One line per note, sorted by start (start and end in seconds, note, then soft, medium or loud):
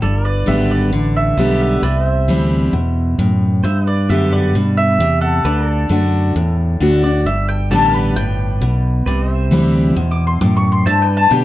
0.02 0.46 G1 medium
0.02 0.88 G2 medium
0.02 0.27 A4 medium
0.02 1.82 D5 medium
0.25 1.81 B4 medium
0.25 0.47 D5 loud
0.46 0.92 G#1 medium
0.46 0.90 D3 medium
0.46 0.90 G3 medium
0.46 0.91 B3 medium
0.46 0.91 G4 medium
0.46 0.70 E5 medium
0.71 1.15 D5 medium
0.92 1.36 A1 medium
0.92 1.36 D3 medium
1.17 1.60 E5 medium
1.37 1.82 B1 medium
1.37 1.81 D3 medium
1.37 1.81 G3 medium
1.37 1.82 B3 medium
1.37 1.82 G4 medium
1.61 2.93 E5 medium
1.82 2.27 C2 medium
1.82 2.69 C3 medium
1.82 2.03 B4 medium
1.82 2.09 D5 medium
2.03 3.62 C5 medium
2.09 3.63 E5 medium
2.28 2.72 D2 medium
2.28 2.71 E3 medium
2.28 2.72 G3 medium
2.28 2.72 C4 medium
2.28 2.72 E4 medium
2.73 3.17 E2 medium
2.73 3.16 B2 medium
3.18 3.63 F#2 medium
3.18 3.62 A2 medium
3.64 4.08 G2 medium
3.64 4.50 G2 medium
3.64 3.84 C5 medium
3.64 3.90 E5 medium
3.84 5.43 B4 medium
3.84 4.09 D5 loud
3.90 5.44 D5 medium
4.09 4.53 F#2 loud
4.09 4.52 D3 medium
4.09 4.53 B3 medium
4.09 4.53 G4 medium
4.09 4.32 E5 medium
4.32 4.76 D5 medium
4.54 4.98 G2 medium
4.54 4.98 B2 medium
4.77 5.21 E5 loud
4.99 5.43 E2 medium
4.99 5.43 C3 loud
5.21 6.53 A4 medium
5.21 6.53 F#5 medium
5.44 5.89 D2 medium
5.44 5.88 D3 medium
5.44 5.70 B4 medium
5.44 7.24 D5 medium
5.70 7.24 A4 medium
5.89 6.34 F#2 medium
5.89 6.33 D3 medium
5.89 6.33 A3 medium
5.89 6.34 D4 medium
5.89 6.34 F#4 medium
6.36 6.79 E2 medium
6.36 7.21 A2 medium
6.80 7.24 D2 medium
6.80 7.02 D3 medium
6.80 7.02 A3 medium
6.80 7.03 D4 loud
6.80 7.03 F#4 loud
7.03 7.26 D4 soft
7.03 7.25 F#4 medium
7.03 7.25 D5 medium
7.25 7.69 G1 medium
7.25 8.12 G2 medium
7.25 7.48 E5 medium
7.49 7.70 G5 loud
7.70 8.14 A1 medium
7.70 8.14 D3 medium
7.70 8.14 G3 medium
7.70 8.15 B3 medium
7.70 8.15 G4 medium
7.70 7.96 A4 medium
7.70 9.05 D5 medium
7.70 7.93 A5 medium
7.94 9.05 B4 medium
7.94 8.16 B5 medium
8.15 8.59 G1 medium
8.15 8.59 A2 medium
8.15 9.47 G5 loud
8.61 9.05 B1 medium
8.61 9.04 B2 medium
9.06 9.50 C2 medium
9.06 9.92 C3 medium
9.06 9.26 B4 medium
9.06 9.33 D5 medium
9.26 10.85 C5 medium
9.33 10.85 E5 medium
9.51 9.95 D2 loud
9.51 9.94 E3 medium
9.51 9.94 G3 medium
9.51 9.95 C4 medium
9.51 9.95 E4 loud
9.96 10.40 E2 medium
9.96 10.39 B2 medium
10.11 10.26 D6 loud
10.27 10.41 C6 medium
10.41 10.85 F#2 loud
10.41 10.84 A2 medium
10.41 10.56 D6 medium
10.57 10.71 C#6 medium
10.72 10.86 C6 medium
10.86 11.30 G2 medium
10.86 11.44 G2 medium
10.86 11.06 C5 medium
10.86 11.12 E5 medium
10.86 11.01 A5 loud
11.02 11.44 B4 medium
11.02 11.16 G5 medium
11.12 11.44 D5 medium
11.17 11.31 A5 loud
11.31 11.44 B2 medium
11.31 11.44 D3 loud
11.31 11.44 G3 medium
11.31 11.44 B3 loud
11.31 11.44 G4 medium
11.31 11.44 G5 medium